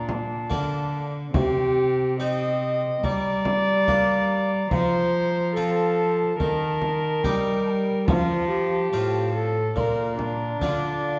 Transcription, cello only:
Already playing: A#2
0.51 D3
1.35 C3
3.04 G3
4.72 F3
6.40 D#3
7.23 G3
8.08 F3
8.93 A2
9.77 A#2
10.62 D3

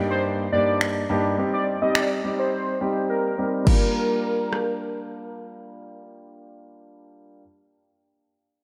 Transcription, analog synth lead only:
0.11 C5
0.52 D5
1.53 D5
1.82 D#5
1.95 D5
2.39 C5
3.10 A#4
3.67 A#4

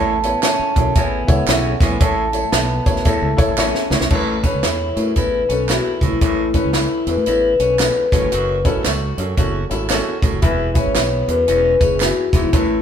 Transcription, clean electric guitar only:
Already playing: A3
0.24 B3
0.43 C#4
0.96 B3
1.48 C#4
1.81 B3
2.00 A3
2.33 A3
2.54 B3
3.06 A3
3.58 C#4
4.11 A3
4.44 C#4
4.64 E4
5.16 E4
5.49 C#4
5.70 E4
6.21 A3
6.55 C#4
6.74 E4
7.27 E4
7.60 C#4
8.13 C#4
8.32 F#4
8.65 E4
8.85 F#4
9.38 F#4
9.71 E4
9.91 F#4
10.43 E4
10.76 C#4
10.95 B3
11.48 C#4
11.80 C#4
12.34 B3
12.54 A3

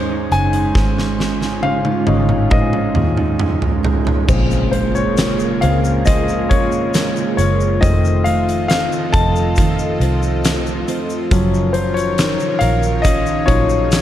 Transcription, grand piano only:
Already playing: G#3 C#4 D#4 C5 C#5 D#5
0.32 G#5
1.63 F5
2.06 G#3 C#4 D#4
2.51 D#5
4.28 C#3 G#3 C4
4.72 C5
4.95 C#5
5.61 C#3 G#3 C4 F5
6.06 D#5
6.49 C#5
7.37 C#5
7.81 D#3 A3 C4 D#5
8.24 F5
8.68 F5
9.12 A5
11.31 F3 F#3 C#4
11.73 C5
11.94 C#5
12.59 F5
13.02 D#5
13.46 F3 F#3 C#4 C#5

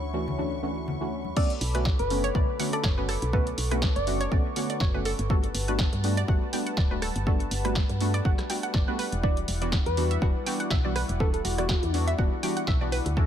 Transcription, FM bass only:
Already playing: D2
1.61 B1
1.99 F#1
2.35 B1
2.84 F#1
3.22 B1
3.58 B1
3.96 F#1
4.32 B1
4.81 F#1
5.19 G1
5.54 G1
5.93 G2
6.28 G1
6.77 D1
7.16 G1
7.51 G1
7.89 G2
8.25 G1
8.74 G1
9.12 E1
9.48 E1
9.86 E2
10.22 E1
10.71 B1
11.09 E1
11.45 E1
11.83 E2
12.18 E1
12.68 B1
13.06 D2

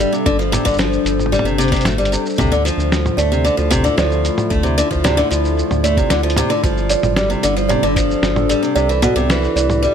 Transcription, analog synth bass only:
0.26 G1
0.66 G1
1.05 G1
1.44 G1
1.84 G1
2.39 D2
2.77 D2
3.18 D2
3.58 D2
3.98 D2
4.51 D2
4.91 D2
5.31 D2
5.71 D2
6.11 D2
6.64 G1
7.03 G1
7.44 G1
7.83 G1
8.22 G1
8.76 C2
9.16 C2
9.56 C2

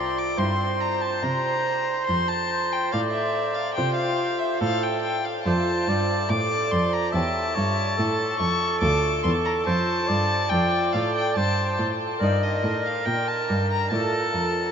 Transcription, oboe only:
Already playing: D5
0.38 C5
2.93 D5
3.78 C5
4.61 A4
5.47 C5
5.89 D5
7.13 E5
7.55 C#5
7.97 A4
9.66 C5
10.08 D5
11.37 C5
12.20 A#4
13.92 A4

